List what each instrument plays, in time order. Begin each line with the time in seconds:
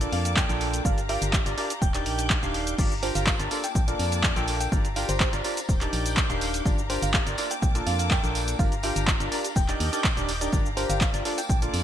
Already playing: string section A#3 A5 D6
0.01 synth stab D4 F4 A4 A#4 D5, closed hi-hat, shaker
0.12 fm bass F2, fm electric piano F5, open hi-hat
0.25 fm electric piano F5, closed hi-hat, shaker
0.37 fm electric piano G5, kick, clap, shaker
0.49 fm bass A#1, synth stab D4 F4 A4 A#4 G5, closed hi-hat, shaker
0.61 open hi-hat
0.73 closed hi-hat, shaker
0.85 fm bass G1, synth stab D4 F4 G4 A#4 D5, string section G4 F5 A#5, fm electric piano F5, kick, shaker
0.98 closed hi-hat, shaker
1.09 synth stab D4 F4 G4 A#4 G5, fm electric piano F5, open hi-hat
1.22 fm bass G1, closed hi-hat, shaker
1.33 kick, clap, shaker
1.46 fm bass G1, synth stab D4 F4 G4 A#4 D5, closed hi-hat, shaker
1.58 synth stab D4 F4 G4 A#4 D5, open hi-hat
1.70 closed hi-hat, shaker
1.82 fm bass D#1, fm electric piano G5, string section D6 G6, kick, shaker
1.94 synth stab D4 D#4 G4 A#4 D5, clap, closed hi-hat, shaker
2.06 fm bass A#1, open hi-hat
2.19 closed hi-hat, shaker
2.30 kick, clap, shaker
2.43 fm bass D#1, synth stab D4 D#4 G4 A#4 F5, closed hi-hat, shaker
2.54 open hi-hat
2.67 closed hi-hat, shaker
2.78 fm bass G1, synth stab D4 F4 G4 A#4 D5, string section G4 F5 A#5, kick, crash, tambourine, shaker
2.91 shaker
3.03 synth stab D4 F4 G4 A#4 G5, fm electric piano C5, open hi-hat, tambourine
3.15 fm bass G1, fm electric piano F5, closed hi-hat, tambourine, shaker
3.27 fm electric piano F5, kick, clap, tambourine, shaker
3.39 fm bass G1, synth stab D4 F4 G4 A#4 D5, closed hi-hat, shaker
3.51 string section A#3 A5 D6, synth stab D4 F4 A4 A#4 D5, open hi-hat, tambourine
3.64 fm electric piano G5, closed hi-hat, tambourine, shaker
3.75 fm bass A#1, fm electric piano G5, kick, tambourine, shaker
3.88 synth stab D4 F4 A4 A#4 D5, closed hi-hat, shaker
3.99 fm bass F2, open hi-hat, tambourine
4.12 closed hi-hat, tambourine, shaker
4.23 kick, clap, tambourine, shaker
4.36 fm bass A#1, synth stab D4 F4 A4 A#4 G5, closed hi-hat, shaker
4.47 open hi-hat, tambourine
4.60 fm electric piano G5, closed hi-hat, tambourine, shaker
4.72 fm bass G1, synth stab D4 F4 G4 A#4 D5, string section G4 F5 A#5, kick, tambourine, shaker
4.85 closed hi-hat, shaker
4.96 synth stab D4 F4 G4 A#4 G5, fm electric piano F5, open hi-hat, tambourine
5.09 fm bass G1, fm electric piano C5, closed hi-hat, tambourine, shaker
5.20 fm electric piano C5, kick, clap, shaker
5.33 fm bass G1, synth stab D4 F4 G4 A#4 D5, closed hi-hat, shaker
5.44 synth stab D4 F4 G4 A#4 D5, open hi-hat, tambourine
5.57 closed hi-hat, tambourine, shaker
5.69 fm bass D#1, string section D6 G6, kick, tambourine, shaker
5.81 synth stab D4 D#4 G4 A#4 D5, clap, closed hi-hat, shaker
5.93 fm bass A#1, open hi-hat, tambourine
6.06 closed hi-hat, tambourine, shaker
6.17 kick, clap, tambourine, shaker
6.30 fm bass D#1, synth stab D4 D#4 G4 A#4 F5, closed hi-hat, shaker
6.41 open hi-hat, tambourine
6.54 closed hi-hat, tambourine, shaker
6.65 fm bass G1, synth stab D4 F4 G4 A#4 D5, string section G4 F5 A#5, kick, tambourine, shaker
6.79 shaker
6.90 synth stab D4 F4 G4 A#4 G5, fm electric piano C5, open hi-hat, tambourine
7.02 fm bass G1, fm electric piano F5, closed hi-hat, tambourine, shaker
7.13 fm electric piano F5, kick, clap, tambourine, shaker
7.27 fm bass G1, synth stab D4 F4 G4 A#4 D5, closed hi-hat, shaker
7.38 string section A#3 A5 D6, synth stab D4 F4 A4 A#4 D5, open hi-hat, tambourine
7.50 fm electric piano G5, closed hi-hat, tambourine, shaker
7.62 fm bass A#1, fm electric piano G5, kick, tambourine, shaker
7.75 synth stab D4 F4 A4 A#4 D5, closed hi-hat, shaker
7.86 fm bass F2, fm electric piano F5, open hi-hat, tambourine
7.99 fm electric piano F5, closed hi-hat, tambourine, shaker
8.10 fm electric piano G5, kick, clap, tambourine, shaker
8.23 fm bass A#1, synth stab D4 F4 A4 A#4 G5, closed hi-hat, shaker
8.35 open hi-hat, tambourine
8.47 closed hi-hat, tambourine, shaker
8.59 fm bass G1, synth stab D4 F4 G4 A#4 D5, string section G4 F5 A#5, fm electric piano F5, kick, tambourine, shaker
8.72 closed hi-hat, shaker
8.83 synth stab D4 F4 G4 A#4 G5, fm electric piano F5, open hi-hat, tambourine
8.96 fm bass G1, closed hi-hat, tambourine, shaker
9.08 kick, clap, shaker
9.20 fm bass G1, synth stab D4 F4 G4 A#4 D5, closed hi-hat, shaker
9.32 synth stab D4 F4 G4 A#4 D5, open hi-hat, tambourine
9.45 closed hi-hat, tambourine, shaker
9.56 fm bass D#1, string section D#5 D6 G6, fm electric piano G5, kick, tambourine, shaker
9.68 synth stab D4 D#4 G4 A#4 D5, clap, closed hi-hat, shaker
9.80 fm bass D#2, open hi-hat, tambourine
9.93 synth stab D4 D#4 G4 A#4 D5, closed hi-hat, tambourine, shaker
10.04 kick, clap, tambourine, shaker
10.17 fm bass D#1, synth stab D4 D#4 G4 A#4 D5, closed hi-hat, shaker
10.29 open hi-hat, tambourine
10.41 synth stab D4 D#4 G4 A#4 D5, closed hi-hat, tambourine, shaker
10.52 fm bass G1, synth stab D4 F4 G4 A#4 D5, string section G4 F5 A#5, kick, tambourine, shaker
10.66 shaker
10.77 synth stab D4 F4 G4 A#4 G5, fm electric piano C5, open hi-hat, tambourine
10.90 fm bass G1, fm electric piano F5, closed hi-hat, tambourine, shaker
11.01 fm electric piano F5, kick, clap, tambourine, shaker
11.14 fm bass G1, synth stab D4 F4 G4 A#4 D5, closed hi-hat, shaker
11.25 string section A#3 A5 D6, synth stab D4 F4 A4 A#4 D5, open hi-hat, tambourine
11.38 fm electric piano G5, closed hi-hat, tambourine, shaker
11.49 fm bass A#1, fm electric piano G5, kick, tambourine, shaker
11.62 synth stab D4 F4 A4 A#4 D5, closed hi-hat, shaker
11.74 fm bass F2, open hi-hat, tambourine